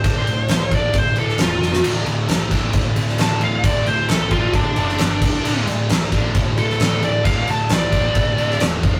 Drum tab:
CC |x-x-x-x-x-x-x---|x-x-x-x-x-x-x-x-|x-x-x-x-x-x-x-x-|x-x-x-x-x-x-x-x-|
SD |----o------oo-oo|----o------oo---|----o------oo---|--o-o------oo---|
BD |o-----o-o-------|------o-o-------|o-----o-o-----o-|------o-o-------|

CC |x-x-x-x-x-x-x-x-|
SD |----o------oo---|
BD |o-----o-o-----o-|